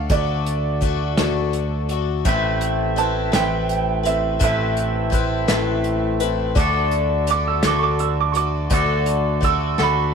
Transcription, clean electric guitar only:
2.26 3.37 A2 medium
2.26 3.36 A3 medium
2.26 3.35 C4 medium
2.26 3.34 E4 medium
2.26 3.33 B4 medium
3.34 4.41 A2 medium
3.34 4.43 A3 medium
3.34 4.40 C4 medium
3.34 4.40 E4 medium
3.34 4.39 B4 medium
4.42 5.47 A2 medium
4.42 5.51 A3 medium
4.42 5.48 C4 medium
4.42 5.49 E4 medium
4.42 5.48 B4 loud
5.50 6.56 A2 medium
5.50 6.56 A3 medium
5.50 6.56 C4 medium
5.50 6.55 E4 medium
5.50 6.55 B4 medium
6.57 7.67 D3 medium
6.57 7.66 D4 medium
6.57 7.65 F#4 medium
6.57 7.64 A4 loud
7.64 8.70 D3 medium
7.64 8.72 D4 medium
7.64 8.70 F#4 medium
7.64 8.73 A4 medium
8.71 9.77 D3 medium
8.71 9.77 D4 medium
8.71 9.78 F#4 medium
8.71 9.77 A4 loud
9.79 10.14 D3 medium
9.79 10.14 D4 medium
9.79 10.14 F#4 medium
9.79 10.14 A4 medium

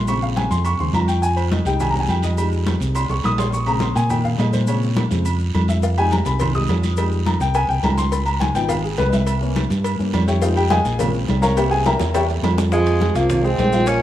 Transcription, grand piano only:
0.08 0.78 C#3 medium
0.08 0.78 G#3 soft
0.08 0.79 C4 medium
0.08 0.22 C#6 loud
0.23 0.36 F5 medium
0.36 0.50 G#5 medium
0.51 0.65 C6 loud
0.66 0.80 C#6 loud
0.79 0.93 C#3 soft
0.79 0.93 G#3 soft
0.79 0.93 C4 soft
0.79 0.94 C6 medium
0.94 1.08 A#5 medium
1.08 1.22 G5 medium
1.22 1.37 G#5 loud
1.36 1.51 C5 medium
1.51 1.65 D#5 medium
1.66 2.35 G3 medium
1.66 2.36 G#3 medium
1.66 2.37 D#4 medium
1.66 1.80 G5 loud
1.81 1.90 G#5 medium
1.90 1.99 A#5 medium
1.99 2.09 G#5 medium
2.09 2.23 G5 medium
2.24 2.64 D#5 medium
2.37 3.48 G3 medium
2.37 3.49 G#3 soft
2.37 3.49 D#4 medium
2.95 3.09 C6 loud
3.10 3.24 C#6 medium
3.25 3.39 D#6 loud
3.39 3.53 C6 medium
3.53 3.67 C#6 loud
3.67 3.86 C#3 medium
3.67 3.86 G#3 medium
3.67 3.87 C4 medium
3.67 3.81 A#5 loud
3.82 3.96 C6 medium
3.96 4.10 G#5 loud
4.10 4.24 G5 medium
4.25 4.39 F5 medium
4.38 4.53 D#5 medium
4.53 4.67 C5 medium
4.67 4.87 C#3 medium
4.67 4.87 G#3 medium
4.67 4.87 C4 medium
4.67 4.95 C#5 medium
5.10 5.23 C#3 medium
5.10 5.24 G#3 medium
5.10 5.24 C4 medium
5.69 5.83 E5 medium
5.83 5.97 F5 medium
5.98 6.38 G3 medium
5.98 6.39 G#3 medium
5.98 6.39 D#4 medium
5.98 6.12 G#5 loud
6.12 6.26 A#5 medium
6.26 6.40 B5 loud
6.41 6.54 C6 medium
6.55 6.68 G3 soft
6.55 6.68 G#3 soft
6.55 6.68 D#4 medium
6.55 6.64 D#6 loud
6.97 7.16 G3 medium
6.97 7.17 G#3 medium
6.97 7.17 D#4 medium
7.26 7.40 A#5 medium
7.41 7.55 G5 loud
7.55 7.69 G#5 loud
7.69 7.83 G5 medium
7.84 7.98 A#5 medium
7.98 8.12 C6 loud
8.12 8.26 B5 medium
8.26 8.40 A#5 medium
8.40 8.55 G#5 medium
8.54 8.74 F3 medium
8.54 8.74 B3 medium
8.54 8.75 D#4 medium
8.54 8.69 G5 loud
8.69 8.83 F5 medium
8.84 8.98 G#4 medium
8.98 9.12 B4 medium
9.08 9.11 D#5 medium
9.13 9.81 E5 medium
9.41 9.60 E3 medium
9.41 9.61 A#3 medium
9.41 9.61 C#4 medium
9.99 10.12 E3 medium
9.99 10.12 A#3 soft
9.99 10.12 C#4 soft
10.28 10.42 G4 medium
10.28 10.42 C#5 medium
10.28 10.42 E5 medium
10.28 10.42 G5 medium
10.41 10.61 G3 medium
10.41 10.61 G#3 medium
10.41 10.61 D#4 medium
10.41 10.56 F4 medium
10.41 10.56 G#4 medium
10.41 10.56 C5 medium
10.41 10.56 F5 medium
10.56 10.71 G4 medium
10.56 10.70 G5 loud
10.70 10.98 G#4 medium
10.70 10.97 D#5 medium
10.70 10.98 F5 medium
10.70 10.97 G#5 loud
10.98 11.54 C#3 medium
10.98 11.54 G#3 soft
10.98 11.54 C4 medium
10.98 11.14 F4 medium
10.98 11.14 A#4 medium
10.98 11.14 C#5 medium
10.98 11.13 F5 medium
11.42 11.56 A#4 medium
11.42 11.56 C#5 medium
11.42 11.56 F5 medium
11.42 11.56 A#5 loud
11.56 12.68 E3 medium
11.56 12.68 A#3 medium
11.56 12.68 C#4 medium
11.56 11.71 G4 medium
11.56 11.71 C#5 medium
11.56 11.71 E5 medium
11.56 11.71 G5 medium
11.71 11.85 G#4 medium
11.71 11.85 G#5 loud
11.86 12.13 A#4 medium
11.86 12.13 E5 medium
11.86 12.13 G5 medium
11.86 12.13 A#5 loud
12.15 12.24 G4 medium
12.15 12.24 C#5 medium
12.15 12.24 E5 medium
12.15 12.23 G5 medium
12.72 12.96 F3 medium
12.72 12.96 F4 medium
12.72 12.96 F5 medium
13.01 13.13 G#3 medium
13.01 13.13 G#4 medium
13.01 13.13 C5 medium
13.15 13.39 F3 medium
13.15 13.39 F4 medium
13.15 13.39 F5 medium
13.44 13.56 G#3 medium
13.44 13.56 G#4 medium
13.44 13.56 C5 medium
13.59 13.71 G#3 medium
13.59 13.71 G#4 medium
13.59 13.71 C5 medium
13.72 13.96 F3 medium
13.72 13.96 F4 medium
13.72 13.97 F5 medium

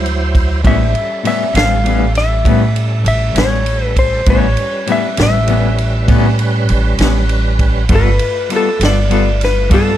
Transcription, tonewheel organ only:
0.00 0.61 F#3 medium
0.00 0.61 E4 medium
0.00 0.61 C5 medium
0.63 0.94 G#3 medium
0.63 0.94 D4 medium
0.63 0.94 C5 medium
0.92 4.22 G3 medium
0.92 4.22 C#4 medium
0.92 4.22 A4 medium
4.26 7.85 G3 medium
4.26 7.85 C#4 medium
4.26 7.85 B4 medium
7.88 9.97 A3 medium
7.88 9.97 F4 medium
7.88 9.97 B4 medium

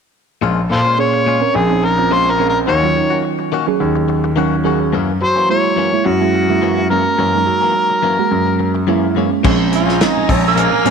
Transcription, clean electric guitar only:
0.41 0.60 A#2 medium
0.41 0.60 G#3 medium
0.41 0.60 C#4 medium
0.41 0.61 F4 medium
0.70 muted clean electric guitar stroke soft
0.85 0.97 G#3 soft
0.85 0.98 C#4 soft
0.85 0.98 F4 soft
0.98 muted clean electric guitar stroke soft
1.14 muted clean electric guitar stroke soft
1.26 1.42 A#2 medium
1.26 1.42 G#3 medium
1.26 1.42 C#4 medium
1.26 1.41 F4 medium
1.42 muted clean electric guitar stroke soft
1.70 muted clean electric guitar stroke soft
1.83 muted clean electric guitar stroke soft
1.98 muted clean electric guitar stroke soft
2.11 2.29 A#2 medium
2.11 2.29 G#3 medium
2.11 2.30 C#4 medium
2.11 2.30 F4 medium
2.38 2.54 A#2 medium
2.38 2.55 G#3 medium
2.38 2.54 C#4 medium
2.38 2.53 F4 medium
2.54 muted clean electric guitar stroke soft
2.67 2.85 D#3 medium
2.67 2.86 A#3 medium
2.67 2.86 C#4 medium
2.67 2.86 F#4 medium
2.95 muted clean electric guitar stroke soft
3.10 3.23 A#3 soft
3.10 3.24 C#4 soft
3.10 3.24 F#4 soft
3.24 muted clean electric guitar stroke soft
3.39 muted clean electric guitar stroke soft
3.52 3.67 D#3 medium
3.52 3.68 A#3 medium
3.52 3.67 C#4 medium
3.52 3.66 F#4 medium
3.67 muted clean electric guitar stroke soft
3.95 muted clean electric guitar stroke soft
4.08 muted clean electric guitar stroke soft
4.24 muted clean electric guitar stroke soft
4.36 4.54 D#3 medium
4.36 4.55 A#3 medium
4.36 4.55 C#4 medium
4.36 4.55 F#4 medium
4.64 4.80 D#3 medium
4.64 4.80 A#3 medium
4.64 4.80 C#4 medium
4.64 4.79 F#4 medium
4.80 muted clean electric guitar stroke soft
4.93 5.11 F#2 medium
4.93 5.11 E3 medium
4.93 5.11 A#3 medium
4.93 5.12 C#4 medium
5.21 muted clean electric guitar stroke soft
5.36 5.48 E3 soft
5.36 5.49 A#3 soft
5.36 5.49 C#4 soft
5.49 muted clean electric guitar stroke soft
5.64 muted clean electric guitar stroke soft
5.76 5.92 F#2 medium
5.76 5.93 E3 medium
5.76 5.92 A#3 medium
5.76 5.91 C#4 medium
5.93 muted clean electric guitar stroke soft
6.21 muted clean electric guitar stroke soft
6.34 muted clean electric guitar stroke soft
6.49 muted clean electric guitar stroke soft
6.61 6.80 F#2 medium
6.61 6.80 E3 medium
6.61 6.81 A#3 medium
6.61 6.81 C#4 medium
6.90 7.05 F#2 medium
6.90 7.05 E3 soft
6.90 7.05 A#3 medium
6.90 7.04 C#4 medium
7.05 muted clean electric guitar stroke soft
7.18 7.36 F#2 medium
7.18 7.37 E3 medium
7.18 7.37 A#3 medium
7.18 7.37 C#4 medium
7.47 muted clean electric guitar stroke soft
7.61 7.74 E3 soft
7.61 7.75 A#3 soft
7.61 7.75 C#4 soft
7.75 muted clean electric guitar stroke soft
7.90 muted clean electric guitar stroke soft
8.03 8.18 F#2 medium
8.03 8.18 E3 medium
8.03 8.18 A#3 medium
8.03 8.17 C#4 medium
8.18 muted clean electric guitar stroke soft
8.46 muted clean electric guitar stroke soft
8.59 muted clean electric guitar stroke soft
8.75 muted clean electric guitar stroke soft
8.87 9.05 F#2 medium
8.87 9.06 E3 medium
8.87 9.06 A#3 medium
8.87 9.07 C#4 medium
9.15 9.31 F#2 medium
9.15 9.31 E3 medium
9.15 9.30 A#3 medium
9.15 9.30 C#4 medium
9.31 muted clean electric guitar stroke soft
9.43 9.59 A#2 medium
9.43 9.59 F3 medium
9.43 9.58 G#3 medium
9.43 9.58 C#4 medium
9.59 muted clean electric guitar stroke soft
9.72 muted clean electric guitar stroke soft
9.86 9.99 F3 soft
9.86 10.00 G#3 soft
9.86 10.00 C#4 soft
10.00 muted clean electric guitar stroke soft
10.28 muted clean electric guitar stroke soft
10.44 muted clean electric guitar stroke soft
10.56 10.72 A#2 medium
10.56 10.72 F3 medium
10.56 10.71 G#3 medium
10.56 10.71 C#4 medium
10.72 muted clean electric guitar stroke soft
10.85 10.90 A#2 medium
10.85 10.90 F3 medium
10.85 10.90 G#3 medium
10.85 10.90 C#4 medium

